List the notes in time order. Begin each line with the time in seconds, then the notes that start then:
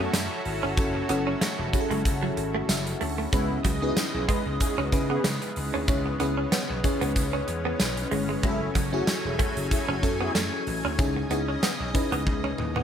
Already playing: F#3 C#4 E4 F#4 A4
0.00 A3 B3 C#4 F#4
0.13 F#2 A3, snare, closed hi-hat, tambourine
0.31 muted clean electric guitar stroke
0.45 G#1, open hi-hat
0.63 G1 C#4
0.77 F#1 C#4 E4 F#4 A4, kick, closed hi-hat
0.95 muted clean electric guitar stroke
1.09 F#1 B3 C#4 E4 F#4 A4, closed hi-hat
1.27 C#4
1.41 A3, snare, closed hi-hat, tambourine
1.59 E1, muted clean electric guitar stroke
1.73 C#4 E4 F#4 G#4, kick, closed hi-hat
1.80 A4
1.91 F#1 G#3, closed hi-hat
2.05 F#1, kick, closed hi-hat
2.23 F#3
2.37 G#1, muted clean electric guitar stroke, closed hi-hat
2.55 A3
2.69 F#1 E5, muted clean electric guitar stroke, snare, closed hi-hat, tambourine
2.87 closed hi-hat
3.01 D2 A3 A5, open hi-hat
3.18 A3
3.33 C#2 C#3 G#3 B3 C#4 E4 G#4 B4 D#5, kick, closed hi-hat
3.64 C#2 F#3, kick, closed hi-hat
3.82 B3 C#4 D#4 F#4 G#4 B4, muted clean electric guitar stroke
3.89 E4
3.97 snare, closed hi-hat, tambourine
4.14 B1 C#4 E4 G#4
4.28 G#3 E4 G#4 B4, kick, closed hi-hat
4.46 C#2
4.60 C#4 E4 G#4, kick, closed hi-hat
4.78 C#2 B3 C#4 D#4 F#4
4.92 C#3 C#4 E4 G#4 B4, muted clean electric guitar stroke, kick, closed hi-hat
5.10 B3 C#4 E4 G#4
5.24 C#3 G#3, snare, closed hi-hat, tambourine
5.42 muted clean electric guitar stroke, closed hi-hat
5.56 C#2, open hi-hat
5.74 D2 C#4
5.88 C#2 C#4 E4 G#4 C#5, kick, closed hi-hat
6.06 muted clean electric guitar stroke
6.20 C#2 B3 C#4 E4 G#4 B4, closed hi-hat
6.37 C#4
6.52 B3, snare, closed hi-hat, tambourine
6.70 B1, muted clean electric guitar stroke
6.83 C#4 E4 G#4 C#5, kick, closed hi-hat
7.01 C#2 B3, closed hi-hat
7.16 C#2, kick, closed hi-hat
7.33 C#4
7.48 E2, muted clean electric guitar stroke, closed hi-hat
7.65 B3
7.80 B1, muted clean electric guitar stroke, snare, closed hi-hat, tambourine
7.97 closed hi-hat
8.11 G1 G#3, open hi-hat
8.29 G#3
8.43 F#1 F#3 G#3 A3 C#4 E4 F#4 G#4 G#5, kick, closed hi-hat
8.51 A4
8.75 F#1 F#3, kick, closed hi-hat
8.92 A3 C#4 E4 F#4 G#4, muted clean electric guitar stroke
9.07 snare, closed hi-hat, tambourine
9.25 E1 C#4 E4 G#4
9.39 A3 E4 F#4 A4, kick, closed hi-hat
9.57 F#1, closed hi-hat
9.71 C#4 E4 G#4, kick, closed hi-hat
9.89 F#1 A3 C#4 F#4
10.02 F#2 C#4 E4 F#4 A4, muted clean electric guitar stroke, kick, closed hi-hat
10.21 B3 C#4 E4 G#4
10.35 F#2 A3, snare, closed hi-hat, tambourine
10.53 muted clean electric guitar stroke
10.67 A1, open hi-hat
10.84 D2 C#4
10.98 C#2 C#3 C#4 D#4 E4 G#4 D#5, kick, closed hi-hat
11.16 muted clean electric guitar stroke
11.30 C#2 B3 C#4 D#4 E4 G#4, closed hi-hat
11.48 C#4
11.63 B3, snare, closed hi-hat, tambourine
11.80 B1, muted clean electric guitar stroke
11.94 C#4 D#4 E4 B4, kick, closed hi-hat
12.12 C#2 B3, closed hi-hat
12.27 C#2, kick, high tom
12.44 C#4, high tom
12.58 D#2, muted clean electric guitar stroke, mid tom
12.76 B3, mid tom